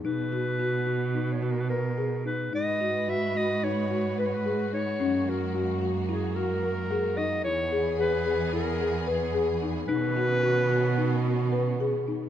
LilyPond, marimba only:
\new Staff \with { instrumentName = "Marimba" } { \time 9/8 \key b \major \tempo 4. = 73 dis'8 fis'8 fis'8 fis'8 dis'8 fis'8 b'8 gis'8 dis'8 | dis'8 fis'8 fis'8 fis'8 dis'8 fis'8 b'8 gis'8 dis'8 | cis'8 fis'8 fis'8 fis'8 e'8 fis'8 ais'8 gis'8 dis'8 | e'8 gis'8 gis'8 gis'8 e'8 gis'8 b'8 gis'8 dis'8 |
dis'8 fis'8 fis'8 fis'8 dis'8 fis'8 b'8 gis'8 dis'8 | }